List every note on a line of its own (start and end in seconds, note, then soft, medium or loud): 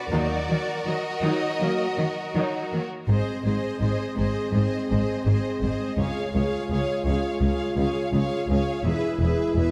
0.00 0.11 D5 medium
0.12 0.47 D#2 soft
0.12 0.20 D#3 soft
0.12 0.47 F#3 soft
0.12 0.39 F#3 soft
0.12 0.39 A#3 soft
0.12 0.47 D#4 soft
0.12 2.84 F#4 soft
0.12 2.84 A#4 soft
0.12 0.85 D5 medium
0.50 0.58 D#3 soft
0.50 0.58 F#3 soft
0.50 0.58 A#3 soft
0.86 0.95 D#3 soft
0.86 0.95 F#3 soft
0.86 2.71 D#5 medium
1.22 1.30 D#3 soft
1.22 1.58 F#3 soft
1.22 1.58 D#4 soft
1.60 1.69 D#3 soft
1.60 1.87 F#3 soft
1.60 1.69 F#3 soft
1.60 1.87 A#3 soft
1.60 1.69 A#3 soft
1.98 2.06 D#3 soft
1.98 2.06 F#3 soft
2.35 2.43 D#3 soft
2.35 2.69 F#3 medium
2.35 2.69 D#4 soft
2.73 2.81 D#3 soft
2.73 2.81 F#3 soft
2.73 2.81 A#3 soft
3.07 3.17 G#1 soft
3.07 3.17 G#2 soft
3.07 8.81 G#3 medium
3.07 5.93 C4 soft
3.07 3.44 G#4 soft
3.07 3.44 C5 soft
3.07 3.44 D#5 soft
3.45 3.54 G#1 soft
3.45 3.53 G#2 soft
3.45 3.80 G#4 soft
3.45 3.80 C5 soft
3.45 3.80 D#5 soft
3.81 3.89 G#1 soft
3.81 3.89 G#2 soft
3.81 4.15 G#4 soft
3.81 4.17 C5 soft
3.81 4.17 D#5 soft
4.17 4.27 G#1 soft
4.17 4.25 G#2 soft
4.17 4.52 G#4 soft
4.17 4.52 C5 soft
4.17 4.53 D#5 soft
4.53 4.63 G#1 soft
4.53 4.61 G#2 soft
4.53 4.88 G#4 soft
4.53 4.89 C5 soft
4.53 4.89 D#5 soft
4.89 5.00 G#1 soft
4.89 4.99 G#2 soft
4.89 5.24 G#4 soft
4.89 5.25 C5 soft
4.89 5.25 D#5 soft
5.25 5.34 G#1 soft
5.25 5.34 G#2 soft
5.25 5.61 G#4 soft
5.25 5.60 C5 soft
5.25 5.61 D#5 soft
5.61 5.70 G#1 soft
5.61 5.71 G#2 soft
5.61 5.96 G#4 soft
5.61 5.97 C5 soft
5.61 5.98 D#5 soft
5.97 6.06 C#2 soft
5.97 6.07 C#2 soft
5.97 8.82 F4 medium
5.97 6.33 G#4 soft
5.97 6.33 C#5 soft
5.97 6.34 F5 soft
6.34 6.42 C#2 soft
6.34 6.43 C#2 soft
6.34 6.68 G#4 soft
6.34 6.69 C#5 soft
6.34 6.70 F5 soft
6.69 6.77 C#2 soft
6.69 6.79 C#2 soft
6.69 7.04 G#4 soft
6.69 7.04 C#5 soft
6.69 7.05 F5 soft
7.05 7.13 C#2 soft
7.05 7.15 C#2 soft
7.05 7.40 G#4 soft
7.05 7.40 C#5 soft
7.05 7.41 F5 soft
7.41 7.49 C#2 soft
7.41 7.50 C#2 soft
7.41 7.75 G#4 soft
7.41 7.77 C#5 soft
7.41 7.77 F5 soft
7.76 7.84 C#2 medium
7.76 7.85 C#2 soft
7.76 8.12 G#4 soft
7.76 8.13 C#5 soft
7.76 8.13 F5 soft
8.12 8.21 C#2 medium
8.12 8.22 C#2 soft
8.12 8.48 G#4 soft
8.12 8.50 C#5 soft
8.12 8.49 F5 soft
8.48 8.56 C#2 soft
8.48 8.58 C#2 soft
8.48 8.84 G#4 soft
8.48 8.85 F5 soft
8.53 8.86 C#5 soft
8.84 8.92 E1 soft
8.84 8.93 E2 medium
8.84 9.71 G#3 medium
8.84 9.71 E4 medium
8.84 9.20 G#4 soft
8.84 9.21 B4 soft
8.84 9.19 E5 soft
9.20 9.28 E1 soft
9.20 9.30 E2 soft
9.20 9.56 G#4 soft
9.20 9.57 B4 soft
9.20 9.56 E5 soft
9.56 9.64 E1 soft
9.56 9.65 E2 soft
9.56 9.71 G#4 soft
9.56 9.71 B4 soft
9.56 9.71 E5 soft